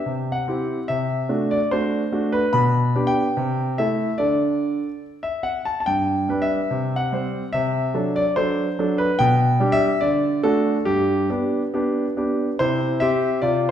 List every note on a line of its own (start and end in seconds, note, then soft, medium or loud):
0.00 0.11 E5 medium
0.06 0.46 C3 soft
0.32 0.88 F#5 medium
0.48 0.77 C4 soft
0.48 0.78 E4 soft
0.48 0.78 G4 soft
0.88 1.29 C3 soft
0.88 1.50 E5 medium
1.29 1.59 A3 soft
1.29 1.59 D4 soft
1.29 1.59 F#4 soft
1.51 1.71 D5 medium
1.71 2.02 A3 soft
1.71 2.02 D4 soft
1.71 2.02 F#4 soft
1.71 2.33 C5 medium
2.12 2.42 A3 soft
2.12 2.42 D4 soft
2.12 2.42 F#4 soft
2.32 2.53 B4 medium
2.53 2.93 B2 medium
2.53 3.04 B5 medium
2.96 3.25 B3 soft
2.96 3.25 D4 soft
2.96 3.25 G4 soft
3.07 3.77 G5 medium
3.37 3.76 C3 medium
3.78 4.08 A3 soft
3.78 4.09 E4 soft
3.78 4.09 A4 soft
3.78 4.19 E5 medium
4.18 4.78 D3 soft
4.18 4.86 D4 soft
4.18 4.86 A4 soft
4.18 5.02 D5 medium
5.23 5.44 E5 medium
5.43 5.65 F#5 medium
5.65 5.79 A5 medium
5.80 5.87 A5 medium
5.86 6.27 G2 soft
5.86 6.42 G5 medium
6.29 6.58 G3 soft
6.29 6.59 D4 soft
6.29 6.59 B4 soft
6.42 6.97 E5 medium
6.71 7.11 C3 soft
6.96 7.48 F#5 medium
7.12 7.42 G3 soft
7.12 7.42 C4 soft
7.12 7.43 C5 soft
7.53 7.94 C3 medium
7.53 8.15 E5 medium
7.94 8.24 F#3 soft
7.94 8.24 D4 soft
7.94 8.24 A4 soft
8.16 8.36 D5 medium
8.36 8.66 F#3 soft
8.36 8.66 D4 soft
8.36 8.66 A4 soft
8.36 8.97 C5 medium
8.79 9.07 F#3 soft
8.79 9.08 D4 soft
8.79 9.08 A4 soft
8.98 9.18 B4 medium
9.19 9.59 B2 medium
9.19 9.73 G5 medium
9.60 9.90 G3 soft
9.60 9.89 D4 soft
9.60 9.90 G4 soft
9.72 10.00 E5 medium
10.01 10.42 D3 medium
10.01 10.39 D5 medium
10.43 10.75 A3 soft
10.43 10.75 D4 soft
10.43 10.75 F#4 soft
10.43 10.86 A4 medium
10.85 11.28 G2 medium
10.85 11.29 G4 medium
11.30 11.61 B3 soft
11.30 11.61 D4 soft
11.30 11.61 G4 soft
11.74 12.04 B3 soft
11.74 12.05 D4 soft
11.74 12.05 G4 soft
12.17 12.47 B3 soft
12.17 12.48 D4 soft
12.17 12.48 G4 soft
12.59 13.00 C3 medium
12.59 12.99 E4 medium
12.59 13.01 C5 medium
13.00 13.41 C4 soft
13.00 13.40 G4 medium
13.00 13.38 E5 medium
13.42 13.71 C3 soft
13.42 13.68 F4 medium
13.42 13.67 D5 medium